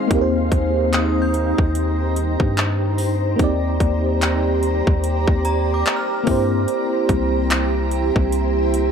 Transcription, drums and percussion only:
0.11 kick, closed hi-hat
0.52 kick, closed hi-hat
0.93 clap, closed hi-hat
1.34 closed hi-hat
1.58 kick
1.75 closed hi-hat
2.16 closed hi-hat
2.40 kick
2.57 clap, closed hi-hat
2.98 open hi-hat
3.39 kick, closed hi-hat
3.80 kick, closed hi-hat
4.22 clap, closed hi-hat
4.63 closed hi-hat
4.87 kick
5.04 closed hi-hat
5.28 kick
5.45 closed hi-hat
5.86 clap, closed hi-hat
6.27 kick, open hi-hat
6.68 closed hi-hat
7.09 kick, closed hi-hat
7.50 clap, closed hi-hat
7.91 closed hi-hat
8.16 kick
8.32 closed hi-hat
8.74 closed hi-hat

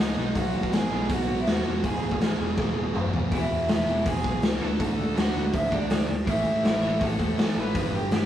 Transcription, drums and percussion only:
0.35 kick, open hi-hat
0.63 kick
0.73 snare, open hi-hat
1.09 kick, open hi-hat
1.47 snare, open hi-hat
1.84 kick, open hi-hat
2.11 kick
2.21 snare, open hi-hat
2.58 kick, snare
2.96 mid tom
3.13 floor tom
3.32 kick, open hi-hat
3.68 snare, open hi-hat
4.06 kick, open hi-hat
4.24 kick
4.42 snare, open hi-hat
4.80 kick, open hi-hat
5.17 snare, open hi-hat
5.53 kick, open hi-hat
5.72 kick
5.90 snare, open hi-hat
6.27 kick, open hi-hat
6.64 snare, open hi-hat
7.01 kick, open hi-hat
7.19 kick
7.38 snare, open hi-hat
7.75 kick, open hi-hat
8.11 snare, open hi-hat

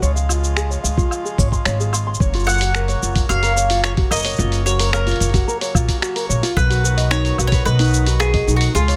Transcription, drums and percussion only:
0.03 shaker
0.16 shaker
0.29 low woodblock, shaker
0.44 shaker
0.57 finger snap, shaker
0.71 shaker
0.85 shaker
0.97 kick, shaker
1.11 low woodblock, shaker
1.26 shaker
1.38 kick, shaker
1.52 kick, shaker
1.65 finger snap, shaker
1.80 shaker
1.93 low woodblock, shaker
2.14 shaker
2.20 kick, shaker
2.34 open hi-hat, shaker
2.39 shaker
2.44 low woodblock, shaker
2.48 shaker
2.53 shaker
2.57 open hi-hat, shaker
2.62 shaker
2.75 finger snap, shaker
2.88 open hi-hat, shaker
3.03 shaker
3.15 kick, open hi-hat, shaker
3.29 low woodblock, shaker
3.43 open hi-hat, shaker
3.57 shaker
3.70 open hi-hat, shaker
3.84 finger snap, shaker
3.97 kick, open hi-hat
4.11 low woodblock, shaker
4.15 shaker
4.19 shaker
4.22 open hi-hat, shaker
4.25 shaker
4.29 shaker
4.32 shaker
4.36 shaker
4.39 shaker
4.52 open hi-hat, shaker
4.66 shaker
4.79 open hi-hat, shaker
4.93 finger snap, low woodblock, shaker
5.07 open hi-hat, shaker
5.11 open hi-hat
5.16 open hi-hat
5.20 open hi-hat, shaker
5.25 open hi-hat
5.29 open hi-hat
5.34 kick, open hi-hat, shaker
5.48 shaker
5.61 open hi-hat, shaker
5.75 kick, low woodblock, shaker
5.88 kick, open hi-hat, shaker
6.02 finger snap, shaker
6.16 open hi-hat, shaker
6.30 shaker
6.43 open hi-hat, shaker
6.57 kick, low woodblock, shaker
6.71 open hi-hat, shaker
6.85 shaker
6.98 open hi-hat, shaker
7.11 finger snap, shaker
7.25 open hi-hat, shaker
7.38 low woodblock, shaker
7.52 kick, open hi-hat, shaker
7.67 shaker
7.79 open hi-hat, shaker
7.84 shaker
7.87 shaker
7.90 shaker
7.94 shaker
8.06 open hi-hat, shaker
8.20 finger snap, low woodblock, shaker
8.34 kick, open hi-hat
8.48 shaker
8.61 open hi-hat, shaker
8.75 shaker
8.88 open hi-hat, shaker

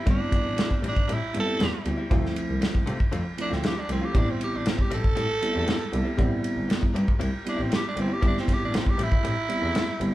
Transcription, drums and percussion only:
0.07 kick, ride bell
0.32 kick, ride bell
0.58 snare, ride bell
0.71 kick
0.84 ride bell
0.96 kick
1.09 ride bell
1.34 ride bell
1.60 snare, ride bell
1.86 ride bell
2.11 kick, ride bell
2.26 snare
2.36 ride bell
2.62 snare, ride bell
2.75 kick
2.87 ride bell
3.00 kick
3.12 ride bell
3.38 ride bell
3.52 snare
3.64 snare, ride bell
3.89 ride bell
4.15 kick, ride bell
4.41 ride bell
4.66 snare, ride bell
4.79 kick
4.91 ride bell
5.04 kick
5.17 ride bell
5.43 ride bell
5.68 snare, ride bell
5.93 ride bell
6.19 kick, ride bell
6.44 ride bell
6.70 snare, ride bell
6.83 kick
6.96 ride bell
7.08 kick
7.21 ride bell
7.47 ride bell
7.72 snare, ride bell
7.97 ride bell
8.23 kick, ride bell
8.37 snare
8.48 kick, snare, ride bell
8.74 snare, ride bell
8.86 kick
8.99 ride bell
9.12 kick
9.25 ride bell
9.50 ride bell
9.75 snare, ride bell
10.01 ride bell

